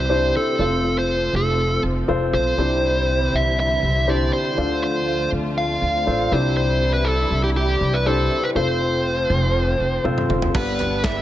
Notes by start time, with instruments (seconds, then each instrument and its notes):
Already playing: upright bass C2, upright piano C3 D4 E4 G4 C5, string section D3 E3 G3 C4 E4, lead electric guitar C5
0.09 upright piano D4 E4 G4 C5
0.36 lead electric guitar A4
0.58 upright bass F1, string section F3 A3, upright piano C4 F4 A4 C5
0.99 lead electric guitar C5
1.33 upright bass F1, lead electric guitar A4
1.83 upright bass F1
2.08 upright bass F1, upright piano C4 F4 A4 C5
2.33 upright bass B1, lead electric guitar C5
2.58 upright bass C2, upright piano C3 D4 E4 G4 C5, string section D3 E3 G3 E4
3.33 upright bass C2, lead electric guitar E5
3.60 lead electric guitar E5
3.83 upright bass C2
4.07 upright piano D4 E4 G4 C5, lead electric guitar D5
4.33 lead electric guitar C5
4.58 upright bass D2, upright piano D3 D4 F4 A4 C5, string section F3 A3 F4
4.84 lead electric guitar C5
5.32 upright bass D2
5.58 lead electric guitar F5
5.82 upright bass D2
6.07 upright bass A1, upright piano D4 F4 A4 C5
6.32 upright bass C2, upright piano C3 D4 E4 G4 C5, string section D3 E3 G3 E4, lead electric guitar C5
6.57 lead electric guitar C5
6.93 lead electric guitar B4
7.05 lead electric guitar A4
7.31 upright bass C2
7.44 lead electric guitar G4
7.57 lead electric guitar G4
7.81 upright bass C2
7.94 lead electric guitar B4
8.06 upright piano D4 E4 G4 C5, lead electric guitar A4
8.44 lead electric guitar B4
8.55 upright bass F1, string section F3 A3 C4, upright piano C4 F4 A4 C5, lead electric guitar C5
9.30 upright bass F1
9.80 upright bass F1
10.04 upright bass F1, upright piano C4 F4 A4 C5, high tom
10.18 mid tom
10.29 upright bass F1, mid tom
10.42 floor tom
10.54 upright bass G1, clean electric guitar G2 D3 G3 B3 D4 B4, upright piano G2 B3 D4 G4, string section D3 G3 B3, lead electric guitar B4, kick, crash
10.79 clean electric guitar G3 B3 D4 B4, closed hi-hat, floor tom
11.04 clean electric guitar G3 B3 D4 B4, lead electric guitar E5, kick, snare, clap, closed hi-hat